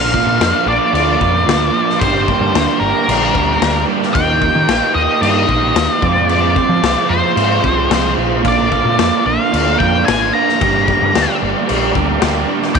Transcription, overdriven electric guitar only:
Already playing: A#2 F3 A#3 D4 F4
0.14 A#2 F3 A#3 D4 F4
0.39 A#2 F3 A#3 D4 F4
0.66 A#2 F3 A#3 D4 F4
0.93 A#2 F3 A#3 D4 F4
1.20 A#2 F3 A#3 D4 F4
1.47 A#2 F3 A#3 D4 F4
1.73 A#2 F3 A#3 D4 F4
2.01 G2 D3 G3 A#3 D4 G4
2.29 G2 D3 G3 A#3 D4 G4
2.54 G2 D3 G3 A#3 D4 G4
2.80 G2 D3 G3 A#3 D4 G4
3.06 G2 D3 G3 A#3 D4 G4
3.34 G2 D3 G3 A#3 D4 G4
3.61 G2 D3 G3 A#3 D4 G4
3.87 G2 D3 G3 A#3 D4 G4
4.14 D#3 A#3 D#4 G4
4.41 D#3 A#3 D#4 G4
4.68 D#3 A#3 D#4 G4
4.94 D#3 A#3 D#4 G4
5.21 D#3 A#3 D#4 G4
5.47 D#3 A#3 D#4 G4
5.74 D#3 A#3 D#4 G4
6.01 F2 C3 F3 G#3 C4 F4
6.27 F2 C3 F3 G#3 C4 F4
6.55 F2 C3 F3 G#3 C4 F4
6.82 F2 C3 F3 G#3 C4 F4
7.08 F2 C3 F3 G#3 C4 F4
7.34 F2 C3 F3 G#3 C4 F4
7.62 F2 C3 F3 G#3 C4 F4
7.89 F2 C3 F3 G#3 C4 F4
8.17 F2 C3 F3 G#3 C4 F4
8.43 A#2 D3 A#3 D4 F4
8.70 A#2 D3 A#3 D4 F4
8.96 A#2 D3 A#3 D4 F4
9.24 A#2 D3 A#3 D4 F4
9.52 A#2 D3 A#3 D4 F4
9.78 A#2 D3 A#3 D4 F4
10.06 A#2 D3 A#3 D4 F4
10.34 A#2 D3 A#3 D4 F4
10.60 G2 D3 G3 A#3 D4 G4
10.86 G2 D3 G3 A#3 D4 G4
11.12 G2 D3 G3 A#3 D4 G4
11.41 G2 D3 G3 A#3 D4 G4
11.68 G2 D3 G3 A#3 D4 G4
11.94 G2 D3 G3 A#3 D4 G4
12.20 G2 D3 G3 A#3 D4 G4
12.47 G2 D3 G3 A#3 D4 G4
12.74 D#3 A#3 D#4 G4

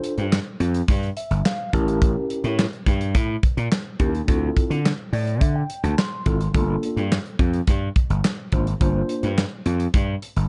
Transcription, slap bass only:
0.18 G2
0.60 F2
0.88 G2
1.31 G1
1.73 A1
2.44 A2
2.86 G2
3.15 A2
3.57 A#2
4.00 D#2
4.28 D2
4.70 D3
5.13 A2
5.41 D3
5.83 D2
6.26 G#1
6.54 G1
6.97 G2
7.39 F2
7.67 G2
8.10 G1
8.52 G#1
8.81 G1
9.23 G2
9.66 F2
9.94 G2
10.36 G1

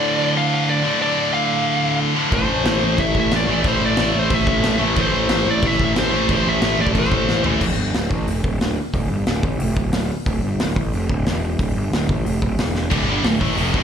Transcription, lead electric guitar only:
Already playing: D5
0.37 F5
0.54 F5
0.70 D5
1.02 D5
1.34 F5
2.34 C5
3.00 E5
3.20 E5
3.36 D5
3.68 C5
3.86 D5
4.19 C5
4.35 E5
5.01 C5
5.50 D5
5.67 E5
5.84 E5
5.99 C5
6.35 C5
6.49 E5
6.81 D5
6.99 C5

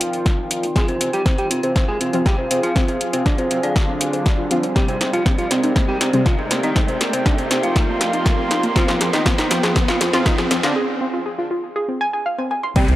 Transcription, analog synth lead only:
Already playing: F4
0.76 G#4
0.88 C4
1.01 C4
1.13 G4
1.26 C4
1.38 G4
1.51 C4
1.63 C4
1.76 C4
1.88 G#4
2.01 C4
2.13 C4
2.26 G4
2.38 C4
2.51 C4
2.63 F4
2.76 C4
2.88 C4
3.13 C4
3.26 D4
3.38 C4
3.51 C4
3.63 D4
4.76 G4
4.88 C4
5.01 C4
5.13 F4
5.26 C4
5.38 F4
5.51 C4
5.63 C4
5.76 C4
5.88 G4
6.01 C4
6.13 C4
6.26 F4
6.38 C4
6.51 C4
6.63 D#4
6.76 C4
6.88 C4
7.13 C4
7.26 D4
7.38 C4
7.51 C4
7.63 F4
8.76 F4
8.88 F3
9.01 F3
9.13 D#4
9.26 F3
9.38 D#4
9.51 F3
9.63 F3
9.76 F3
9.88 F4
10.01 F3
10.14 F3
10.26 D#4
10.38 F3
10.51 F3
10.63 D4
12.76 G4
12.89 C4

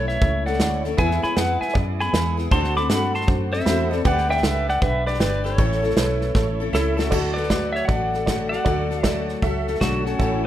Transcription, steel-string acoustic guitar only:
Already playing: A3 C#4 E4 A4
0.46 A3 C#4 E4 A4
0.61 A3 C#4 E4 A4
0.85 A3 C#4 E4 A4
0.98 E3 G#3 B3 E4 G#4
1.22 B3 E4 G#4
1.36 G#3 B3 E4 G#4
2.00 B3 E4 G#4
2.14 G#3 B3 E4 G#4
2.37 B3 E4 G#4
2.52 D3 A3 C4 F#4 A4
2.75 C4 F#4 A4
2.90 A3 C4 F#4 A4
3.52 C4 F#4 A4
3.66 A3 C4 F#4 A4
3.91 C4 F#4 A4
4.05 G3 D4 G4 B4
4.29 D4 G4 B4
4.44 G3 D4 G4 B4
5.07 D4 G4 B4
5.20 G3 D4 G4 B4
5.44 D4 G4 B4
5.58 A2 E3 A3 C#4 E4 A4
5.82 A3 C#4 E4 A4
5.96 A3 C#4 E4 A4
6.60 A3 C#4 E4 A4
6.73 A3 C#4 E4 A4
6.97 A3 C#4 E4 A4
7.11 D3 F#3 A3 F#4 A4
7.36 A3 F#4 A4
7.50 D3 F#3 A3 F#4 A4
7.90 F#3 A3 F#4 A4
8.14 A3 F#4 A4
8.29 D3 F#3 A3 F#4 A4
8.53 A3 F#4 A4
8.66 D3 F#3 A3 F#4 A4
8.91 A3 F#4 A4
9.05 D3 F#3 A3 F#4 A4
9.43 F#3 A3 F#4 A4
9.69 A3 F#4 A4
9.82 D3 F#3 A3 F#4 A4
10.07 A3 F#4 A4
10.21 A2 E3 A3 C#4 E4 A4

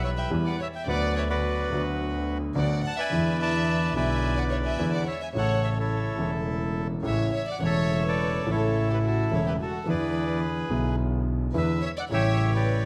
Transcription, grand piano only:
Already playing: B1 B2 E3 G3 B3 G4
0.30 E2 E3 G3 B3 G4
0.86 D2 D3 F#3 B3
0.90 F#4
1.71 D2 D3 F#3 B3 F#4
2.55 D2 D3 F#3 B3 F#4
3.10 E2 D3 E3 G#3 B3
3.14 E4
3.93 B1 B2 D3 G#3 B3 E4
4.79 E2 D3 E3 G#3 B3 E4
5.33 A1 A2 C#3 E3 A3
5.37 E4
6.16 E1 E2 C#3 E3 A3
6.20 E4
7.03 A1 A2 C#3 E3 A3 E4
7.59 E1 E2 C#3 E3 A3 E4
8.44 A1 A2 C#3 E3 A3 E4
9.31 E1 E2 C#3 E3 A3 E4
9.85 E2 D3 E3 G#3 B3 E4
10.68 B1 B2 D3 G#3 B3
10.73 E4
11.54 E2 D3 E3 G#3 B3 E4
12.09 A1 A2 C#3 G3 A3
12.13 E4

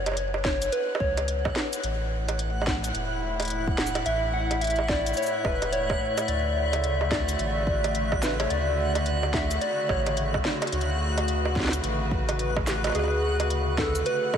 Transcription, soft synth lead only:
Already playing: C#5
0.45 C#5
0.72 B4
1.00 C#5
4.06 E5
4.34 F#5
4.61 E5
4.89 D5
5.17 C#5
5.45 B4
5.72 C#5
6.28 D5
7.11 D5
8.22 B4
8.40 C#5
8.50 D5
9.34 E5
9.61 D5
9.89 C#5
12.95 G#4
13.79 A4
14.06 B4
14.34 A4

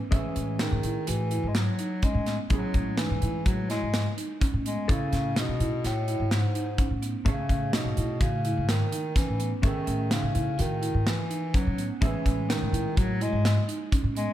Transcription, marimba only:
0.11 C#4
0.35 C#4
0.59 D#4
0.84 E4
1.07 F#4
1.32 E4
1.79 D#4
2.03 C#4
2.27 B3
2.50 C#4
2.74 C#4
2.98 D#4
3.23 E4
3.46 F#4
3.69 E4
4.17 D#4
4.41 C#4
4.65 B3
4.89 C#4
5.12 C#4
5.36 D#4
5.60 E4
5.84 F#4
6.07 E4
6.55 D#4
6.78 C#4
7.02 B3
7.26 C#4
7.49 C#4
7.73 D#4
7.97 E4
8.21 F#4
8.45 E4
8.92 D#4
9.15 C#4
9.39 B3
9.63 C#4
9.86 C#4
10.11 D#4
10.34 E4
10.58 F#4
10.82 E4
11.30 D#4
11.54 C#4
11.78 B3
12.01 C#4
12.25 C#4
12.49 D#4
12.72 E4
12.97 F#4
13.20 E4
13.68 D#4
13.92 C#4
14.15 B3

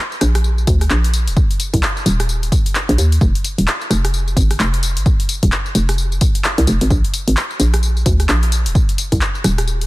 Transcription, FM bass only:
0.21 A#1
0.67 D2
0.90 A#1
1.27 D#1
1.74 C2
2.06 D#1
2.89 A#1
2.98 D#2
3.21 F1
3.58 D#1
3.90 F1
4.37 G#1
4.60 F1
4.97 G#1
5.43 D#1
5.75 F1
6.58 C2
6.67 F1
6.81 G#1
6.90 A#1
7.28 G#1
7.60 A#1
8.06 D2
8.29 A#1
8.66 D#1
9.12 C2
9.44 D#1

